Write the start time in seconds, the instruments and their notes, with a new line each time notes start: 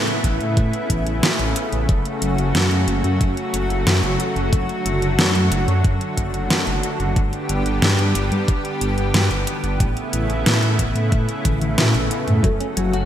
Already playing: analog synth pad C#3 A3 B3 E4
0.08 detuned saw bass A2, closed hi-hat
0.24 detuned saw bass A1, kick, closed hi-hat
0.40 detuned saw bass A2, closed hi-hat
0.57 detuned saw bass A2, kick, closed hi-hat
0.73 closed hi-hat
0.90 detuned saw bass A1, kick, closed hi-hat
1.07 detuned saw bass A1, closed hi-hat
1.23 detuned saw bass A2, snare, closed hi-hat
1.39 detuned saw bass A1, closed hi-hat
1.56 closed hi-hat
1.72 detuned saw bass A1, closed hi-hat
1.89 detuned saw bass F#1, analog synth pad F#3 F#4, kick, closed hi-hat
2.05 closed hi-hat
2.22 detuned saw bass F#1, closed hi-hat
2.38 detuned saw bass F#1, closed hi-hat
2.55 detuned saw bass F#2, snare, closed hi-hat
2.71 detuned saw bass F#2, closed hi-hat
2.88 detuned saw bass F#1, closed hi-hat
3.04 detuned saw bass F#2, closed hi-hat
3.21 detuned saw bass F#2, kick, closed hi-hat
3.37 closed hi-hat
3.54 detuned saw bass F#1, closed hi-hat
3.70 detuned saw bass F#1, closed hi-hat
3.86 detuned saw bass F#2, snare, closed hi-hat
4.03 detuned saw bass F#1, closed hi-hat
4.20 closed hi-hat
4.36 detuned saw bass F#1, closed hi-hat
4.53 detuned saw bass F#1, analog synth pad D3, kick, closed hi-hat
4.69 closed hi-hat
4.86 detuned saw bass F#1, closed hi-hat
5.02 detuned saw bass F#1, closed hi-hat
5.18 detuned saw bass F#2, snare, closed hi-hat
5.35 detuned saw bass F#2, closed hi-hat
5.51 detuned saw bass F#1, closed hi-hat
5.68 detuned saw bass F#2, closed hi-hat
5.84 detuned saw bass F#2, kick, closed hi-hat
6.01 closed hi-hat
6.17 detuned saw bass F#1, kick, closed hi-hat
6.34 detuned saw bass F#1, closed hi-hat
6.50 detuned saw bass F#2, snare, closed hi-hat
6.67 detuned saw bass F#1, closed hi-hat
6.83 closed hi-hat
7.00 detuned saw bass F#1, closed hi-hat
7.16 detuned saw bass G1, analog synth pad G3 B3 G4, kick, closed hi-hat
7.33 closed hi-hat
7.49 detuned saw bass G1, closed hi-hat
7.66 detuned saw bass G1, closed hi-hat
7.82 detuned saw bass G2, snare, closed hi-hat
7.99 detuned saw bass G2, closed hi-hat
8.15 detuned saw bass G1, closed hi-hat
8.32 detuned saw bass G2, closed hi-hat
8.48 detuned saw bass G2, kick, closed hi-hat
8.65 closed hi-hat
8.81 detuned saw bass G1, closed hi-hat
8.98 detuned saw bass G1, closed hi-hat
9.14 detuned saw bass G2, snare, closed hi-hat
9.31 detuned saw bass G1, closed hi-hat
9.47 closed hi-hat
9.64 detuned saw bass G1, closed hi-hat
9.80 detuned saw bass A1, analog synth pad C#3 A3 E4, kick, closed hi-hat
9.97 closed hi-hat
10.13 detuned saw bass A1, closed hi-hat
10.30 detuned saw bass A1, closed hi-hat
10.46 detuned saw bass A2, snare, closed hi-hat
10.63 detuned saw bass A2, closed hi-hat
10.79 detuned saw bass A1, kick, closed hi-hat
10.96 detuned saw bass A2, closed hi-hat
11.12 detuned saw bass A2, kick, closed hi-hat
11.29 closed hi-hat
11.45 detuned saw bass A1, kick, closed hi-hat, high tom
11.61 detuned saw bass A1, closed hi-hat, high tom
11.78 detuned saw bass A2, snare, closed hi-hat, mid tom
11.94 detuned saw bass A1, closed hi-hat, mid tom
12.11 closed hi-hat
12.28 detuned saw bass A2, closed hi-hat, mid tom
12.44 detuned saw bass F#1, analog synth pad F#3 F#4, clean electric guitar F#3, soft synth lead A4, kick, closed hi-hat
12.60 clean electric guitar C#4, closed hi-hat
12.77 detuned saw bass F#1, clean electric guitar F#3, soft synth lead F#4, closed hi-hat
12.93 detuned saw bass F#1, clean electric guitar F#4, closed hi-hat